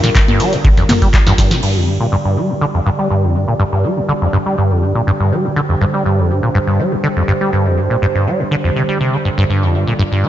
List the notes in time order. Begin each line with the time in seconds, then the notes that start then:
Already playing: D3 G3 F4 A#4
0.04 A#2, snare, closed hi-hat
0.15 G2, kick, clap, closed hi-hat
0.28 G2, closed hi-hat, high conga
0.40 G3, open hi-hat, ride
0.53 G2, closed hi-hat
0.64 D3, kick, closed hi-hat
0.77 F2, snare, closed hi-hat
0.89 C3, snare, mid tom, open hi-hat, ride, high conga
1.02 G3, kick, closed hi-hat
1.14 G3, kick, clap, closed hi-hat
1.27 G2, snare, closed hi-hat
1.38 G2, kick, snare, open hi-hat, ride
1.51 C3, snare, closed hi-hat
1.63 G2 D3 G3 G4 D5, crash
1.76 F2
1.87 G2
2.00 A#2
2.12 G2
2.25 G2
2.37 G3
2.50 G2
2.61 D3
2.74 F2
2.86 G2
2.99 G3
3.10 G2
3.23 F2
3.35 G2
3.48 A#2
3.59 G2
3.72 G2
3.84 G3
3.97 G2
4.09 D3
4.21 F2
4.33 G2
4.46 G3
4.58 G2
4.71 F2
4.83 G2
4.95 A#2
5.07 G2
5.20 G2
5.32 G3
5.44 G2
5.56 D3 C5
5.69 F2
5.81 G2
5.94 G3
6.06 G2
6.18 F2
6.30 G2
6.43 A#2
6.54 G2
6.67 G2
6.79 G3
6.92 G2
7.04 D3
7.17 F2
7.28 G2
7.41 G3
7.53 G2
7.66 F2
7.78 G2
7.90 A#2
8.02 G2
8.15 G2
8.27 G3
8.40 G2
8.51 D3
8.64 F2
8.76 C3
8.89 G3
9.01 C3
9.13 D3
9.25 G2
9.38 G2
9.50 G2 F4 D5
9.62 F2
9.74 G2
9.87 A#2
9.99 G2
10.12 G2
10.23 G3